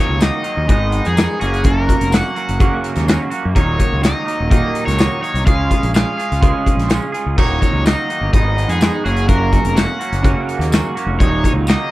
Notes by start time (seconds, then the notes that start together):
Already playing: D#2 A#2 A#3 D#4 C#5
0.00 D#3 F#3
0.09 C#2
0.19 D#3 F#3 A#3 D#4, snare, closed hi-hat, tambourine
0.23 D#5
0.43 D#3 F#3 A#3 D#4, closed hi-hat
0.57 D#2
0.66 G#1 G#2 D#3 G#3 B3 D#4, kick, closed hi-hat
0.72 D#5
0.92 closed hi-hat
1.05 F2 G#4, closed hi-hat
1.16 D#3 G#3 B3 D#4, snare, closed hi-hat, tambourine
1.39 F#1 F#2 C#3 F#3 A#3 C#4 F#4 G#4, closed hi-hat
1.54 closed hi-hat
1.63 F#2 C#3 F#3 A#3 C#4 F#4 A#4, kick, closed hi-hat
1.87 F#3 A#3 C#4 F#4, kick, closed hi-hat
2.01 F1, closed hi-hat
2.11 F#3 A#3 C#4 F#4 F#5, snare, closed hi-hat, tambourine
2.35 F#3 A#3 C#4 F#4, closed hi-hat
2.49 F#1, closed hi-hat
2.59 F#2 C#3 F#3 A#3 C#4 F#4, kick, closed hi-hat
2.84 closed hi-hat
2.96 D#2, snare, closed hi-hat
3.06 F#3 A#3 C#4 F#4, snare, closed hi-hat, tambourine
3.30 F#3 A#3 C#4 F#4, closed hi-hat
3.45 F#2
3.54 D#1 D#2 A#2 D#3 F#3 A#3 D#4 C#5, kick, closed hi-hat
3.77 D#3 F#3 A#3 D#4 C#5, kick, closed hi-hat
3.92 C#2
4.02 D#3 F#3 A#3 D#4 D#5, snare, closed hi-hat, tambourine
4.25 D#3 F#3 A#3 D#4, closed hi-hat
4.40 D#1
4.50 D#2 A#2 D#3 F#3 A#3 D#4 D#5, kick, closed hi-hat
4.75 closed hi-hat
4.86 C#2 C#5, snare, closed hi-hat
4.96 D#3 F#3 A#3 D#4, closed hi-hat, tambourine
5.00 snare
5.21 D#3 F#3 A#3 D#4 C#5, closed hi-hat
5.34 C2, closed hi-hat
5.44 C#2 C#3 G#3 C#4 F4 G#4 F5, kick, closed hi-hat
5.70 C#4 F4 G#4, kick, closed hi-hat
5.83 A#1, closed hi-hat
5.93 G#3 C#4 F4 G#4 F5, snare, closed hi-hat, tambourine
6.17 C#4 F4 G#4, closed hi-hat
6.32 C#2, closed hi-hat
6.40 C#3 G#3 C#4 F4 G#4, kick, closed hi-hat
6.66 kick, closed hi-hat
6.77 A#1, snare, closed hi-hat
6.88 G#3 C#4 F4 G#4, snare, closed hi-hat, tambourine
7.12 C#4 F4 G#4, closed hi-hat
7.26 C#2
7.37 D#1 D#2 A#2 D#3 F#3 A#3 D#4 C#5, kick, crash
7.60 D#3 F#3 A#3 D#4 C#5, kick, closed hi-hat
7.73 C#2
7.85 D#3 F#3 A#3 D#4 D#5, snare, closed hi-hat, tambourine
8.09 D#3 F#3 A#3 D#4, closed hi-hat
8.21 G1
8.33 G#1 G#2 D#3 G#3 B3 D#4 D#5, kick, closed hi-hat
8.58 closed hi-hat
8.69 F2 G#4, closed hi-hat
8.81 D#3 G#3 B3 D#4, snare, closed hi-hat, tambourine
9.04 F#1 F#2 C#3 F#3 A#3 C#4 F#4 G#4, closed hi-hat
9.17 closed hi-hat
9.27 F#2 C#3 F#3 A#3 C#4 F#4 A#4, kick, closed hi-hat
9.52 F#3 A#3 C#4 F#4, kick, closed hi-hat
9.65 F1, closed hi-hat
9.76 F#3 A#3 C#4 F#4 F#5, snare, closed hi-hat, tambourine
9.99 F#3 A#3 C#4 F#4, closed hi-hat
10.12 F#1, closed hi-hat
10.22 F#2 C#3 F#3 A#3 C#4 F#4, kick, closed hi-hat
10.49 closed hi-hat
10.59 D#2, closed hi-hat
10.72 F#3 A#3 C#4 F#4, snare, closed hi-hat, tambourine
10.95 F#3 A#3 C#4 F#4, closed hi-hat
11.06 F1
11.20 D#1 D#2 A#2 D#3 F#3 A#3 D#4 C#5, kick, closed hi-hat
11.44 D#3 F#3 A#3 D#4 C#5, kick, closed hi-hat
11.54 C#2
11.67 D#3 F#3 A#3 D#4 D#5, snare, closed hi-hat, tambourine